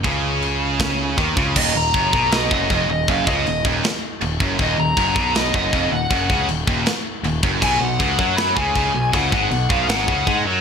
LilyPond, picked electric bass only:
\new Staff \with { instrumentName = "Picked electric bass" } { \clef bass \time 4/4 \key ees \minor \tempo 4 = 158 des,2. ees,8 des,8 | ees,,8 ees,,8 ges,,8 ces,4 ges,,8 f,,8 ees,,8 | ges,,8 des,8 ees,,8 ees,,8 r4 ees,,8 ges,,8 | ees,,8 ees,,8 ges,,8 ces,4 ges,,8 f,,8 ees,,8 |
ges,,8 des,8 ees,,8 ees,,8 r4 ees,,8 ges,,8 | b,,8 b,,8 des,8 fis,4 des,8 des,8 b,,8 | des,8 aes,,8 b,,8 b,,8 aes,,8 des,8 aes,8 fis,8 | }